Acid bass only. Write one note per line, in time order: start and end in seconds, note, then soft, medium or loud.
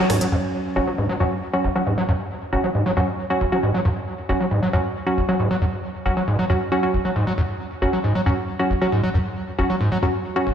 0.10 0.19 G#2 medium
0.21 0.27 F#3 loud
0.32 0.36 F#2 loud
0.76 0.80 F#1 loud
0.87 0.93 F#3 medium
0.98 1.07 G#2 medium
1.09 1.15 F#3 loud
1.20 1.24 F#2 loud
1.64 1.68 F#1 loud
1.76 1.82 F#3 medium
1.86 1.96 G#2 medium
1.98 2.04 F#3 loud
2.09 2.12 F#2 loud
2.53 2.56 F#1 loud
2.64 2.70 F#3 medium
2.75 2.84 G#2 medium
2.86 2.92 F#3 loud
2.97 3.00 F#2 medium
3.41 3.45 F#1 loud
3.52 3.58 F#3 medium
3.63 3.72 G#2 medium
3.74 3.80 F#3 loud
3.85 3.89 F#2 loud
4.29 4.33 F#1 loud
4.40 4.46 F#3 medium
4.51 4.60 G#2 medium
4.63 4.68 F#3 loud
4.73 4.77 F#2 loud
5.17 5.21 F#1 loud
5.29 5.35 F#3 medium
5.39 5.49 G#2 medium
5.51 5.57 F#3 loud
5.61 5.65 F#2 loud
6.06 6.09 F#1 loud
6.17 6.23 F#3 medium
6.28 6.37 G#2 medium
6.39 6.45 F#3 loud
6.50 6.53 F#2 medium
6.94 6.97 F#1 loud
7.05 7.11 F#3 medium
7.16 7.25 G#2 medium
7.27 7.33 F#3 loud
7.38 7.42 F#2 loud
7.82 7.86 F#1 loud
7.93 7.99 F#3 medium
8.04 8.13 G#2 medium
8.15 8.21 F#3 loud
8.26 8.30 F#2 loud
8.70 8.74 F#1 loud
8.81 8.87 F#3 medium
8.92 9.02 G#2 medium
9.03 9.09 F#3 loud
9.14 9.18 F#2 loud
9.58 9.62 F#1 loud
9.70 9.76 F#3 medium
9.80 9.90 G#2 medium
9.92 9.98 F#3 loud
10.03 10.06 F#2 loud
10.47 10.50 F#1 loud